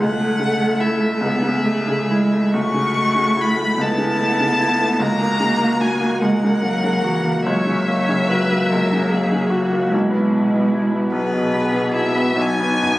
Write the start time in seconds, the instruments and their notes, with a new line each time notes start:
0.00 grand piano C#2, cello A3, viola A4, violin F#5
0.21 grand piano A3
0.39 grand piano C#3
0.60 grand piano A3
0.80 grand piano E4, violin E5
1.00 grand piano A3
1.21 grand piano C#2, cello B3, viola G#4
1.42 grand piano C#3
1.63 cello A3, grand piano A3
1.88 grand piano C#3
2.09 cello G#3, grand piano E4
2.32 grand piano A3
2.53 grand piano C#2, cello A3, viola F#4, violin C#6
2.74 grand piano C#3
2.96 grand piano A3
3.15 grand piano C#3
3.36 grand piano E4
3.41 violin B5
3.56 grand piano A3
3.77 grand piano C#2, cello B3, viola E4
3.81 violin A5
3.98 grand piano C#3
4.18 grand piano A3
4.40 grand piano C#3
4.60 grand piano E4
4.81 grand piano A3
4.97 grand piano C#2, cello A#3, viola F#4, violin A#5
5.21 grand piano A#3
5.40 grand piano C#3
5.60 grand piano A#3
5.81 grand piano F#4, violin G#5
6.00 grand piano A#3
6.20 grand piano C#2, cello G#3, viola A#4, violin F#5
6.43 grand piano C#3
6.61 cello F#3, grand piano A#3
6.84 grand piano C#3
7.02 cello E3, grand piano F#4
7.25 grand piano A#3
7.43 grand piano C#2, cello F#3, viola C#5, violin E5
7.66 grand piano C#3
7.87 grand piano A#3, viola C#5
8.09 grand piano C#3
8.29 grand piano F#4, viola B4
8.51 grand piano A#3
8.70 grand piano C#2, viola A#4
8.92 grand piano C#3
9.10 grand piano A#3, viola G#4
9.32 grand piano C#3
9.50 viola F#4, grand piano F#4
9.72 grand piano A#3
9.91 grand piano B1, cello G#3, viola E4
10.10 grand piano B3
10.32 grand piano B2
10.54 grand piano B3
10.74 grand piano E4
10.91 grand piano B3
11.11 grand piano B1, cello B3, viola G#4, violin B4
11.32 grand piano B2
11.53 grand piano B3
11.73 grand piano B2
11.94 grand piano E4, violin E5
12.16 grand piano B3
12.36 grand piano B1, viola D#4
12.40 cello B3, violin G#5
12.60 grand piano B3
12.83 grand piano F#2